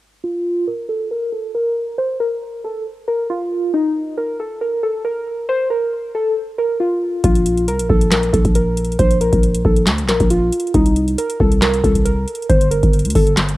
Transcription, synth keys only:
0.24 F4
0.67 A#4
0.89 A4
1.11 A#4
1.32 A4
1.55 A#4
1.98 C5
2.20 A#4
2.64 A4
3.08 A#4
3.30 F4
3.74 D#4
4.17 A#4
4.40 A4
4.61 A#4
4.83 A4
5.05 A#4
5.49 C5
5.70 A#4
6.15 A4
6.58 A#4
6.80 F4
7.24 F4
7.68 A#4
7.89 A4
8.12 A#4
8.33 A4
8.55 A#4
8.99 C5
9.21 A#4
9.65 A4
10.09 A#4
10.31 F4
10.74 D#4
11.18 A#4
11.40 A4
11.62 A#4
11.84 A4
12.05 A#4
12.49 C5
12.71 A#4
13.15 A4

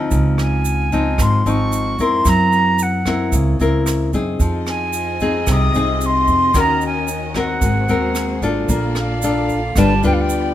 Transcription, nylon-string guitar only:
Already playing: F3 C4 D#4
0.12 C#3
0.92 F3 C4 D#4
1.20 G#2
1.46 F3 C4 D#4
2.00 C4 E4 A#4
2.26 F#3
3.07 C4 E4 A#4
3.34 C#3
3.61 C4 E4 A#4
4.14 C4 D#4 G#4
4.40 F3
5.21 C4 D#4 G#4
5.48 C3
5.75 C4 D#4 G#4
6.55 D#3 C#4 F#4 A#4
7.36 C4 F#4 A#4
7.63 G#3
7.89 C4 F#4 A#4
8.43 D4 F4 A4
8.69 A#3
9.24 D4 F4 A4
9.77 G3 D4 F4 B4
10.04 D4 F4 B4

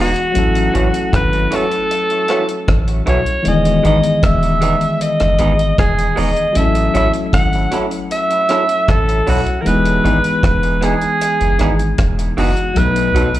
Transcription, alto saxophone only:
0.01 F#4
1.16 B4
1.55 A4
3.09 C#5
3.48 D#5
3.87 D#5
4.25 E5
5.02 D#5
5.79 G#4
6.19 D#5
6.57 E5
6.97 E5
7.34 F#5
8.12 E5
8.90 A4
9.29 F#4
9.61 A#4
9.67 B4
10.45 B4
10.84 G#4
12.39 F#4
12.78 B4

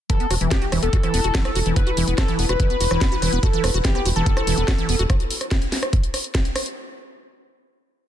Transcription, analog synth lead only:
0.10 A4
0.51 G4
0.83 A4
1.76 B4
2.18 A4
2.49 B4
3.43 A4
3.85 G4
4.16 A4

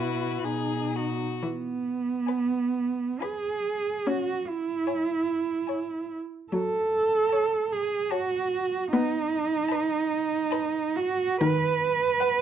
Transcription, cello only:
Already playing: B2
0.45 B2
1.43 B3
3.22 G#4
4.07 F#4
4.48 E4
6.53 A4
7.72 G#4
8.12 F#4
8.93 D#4
10.96 F#4
11.41 B4

